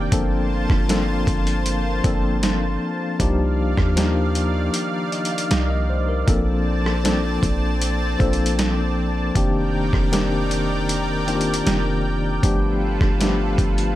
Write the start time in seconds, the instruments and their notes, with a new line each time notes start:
Already playing: tine electric piano D#3 A#3 C4 D4 G4, analog synth pad A#3
0.12 808-style bass G1, tine electric piano F3 A#3 C4 D4 A4, analog synth pad F4 C5 A5, kick, closed hi-hat
0.70 808-style bass G1, kick, cross-stick
0.88 tine electric piano F3 A#3 C4 D4 A4, snare, closed hi-hat
1.27 808-style bass G1, kick, closed hi-hat
1.47 closed hi-hat
1.66 closed hi-hat
2.04 808-style bass G1, tine electric piano F3 A#3 C4 D4 A4, kick, closed hi-hat
2.43 snare, closed hi-hat
3.19 808-style bass C2, analog synth pad D#3 D5 F5, tine electric piano F3 A#3 D4 D#4 G4, kick, closed hi-hat
3.77 808-style bass D#2, kick, cross-stick
3.96 tine electric piano F3 A#3 D4 D#4 G4, snare, closed hi-hat
4.35 closed hi-hat
4.74 closed hi-hat
5.12 tine electric piano D#5, closed hi-hat
5.25 closed hi-hat
5.32 tine electric piano F5
5.38 closed hi-hat
5.51 808-style bass C2, snare, closed hi-hat
5.70 tine electric piano D#5
5.89 tine electric piano C5
6.09 tine electric piano A#4
6.27 808-style bass A#1, tine electric piano F3 A#3 C4 D4 A4, analog synth pad C4 D5 A5, kick, closed hi-hat
6.86 cross-stick
7.04 tine electric piano F3 A#3 C4 D4 A4, snare, closed hi-hat
7.43 808-style bass A#1, kick, closed hi-hat
7.82 closed hi-hat
8.19 808-style bass A#1, tine electric piano F3 A#3 C4 D4 A4, kick, closed hi-hat
8.33 closed hi-hat
8.46 closed hi-hat
8.59 snare, closed hi-hat
9.35 808-style bass F1, tine electric piano D#3 A#3 C4 D4 G4, analog synth pad D#3 A#4 D5 G5, kick, closed hi-hat
9.93 808-style bass F1, kick, cross-stick
10.12 tine electric piano D#3 A#3 C4 D4 G4, snare, closed hi-hat
10.51 closed hi-hat
10.89 closed hi-hat
11.27 tine electric piano D#3 A#3 C4 D4 F4, closed hi-hat
11.36 tine electric piano G4
11.41 closed hi-hat
11.54 closed hi-hat
11.67 808-style bass F1, snare, closed hi-hat
12.42 808-style bass G1, tine electric piano F3 A3 B3 D4 G4, analog synth pad F4 A4 B4, kick, closed hi-hat
13.01 808-style bass G1, kick, cross-stick
13.20 tine electric piano F3 A3 B3 D4 G4, snare, closed hi-hat
13.58 808-style bass G1, kick, closed hi-hat
13.78 closed hi-hat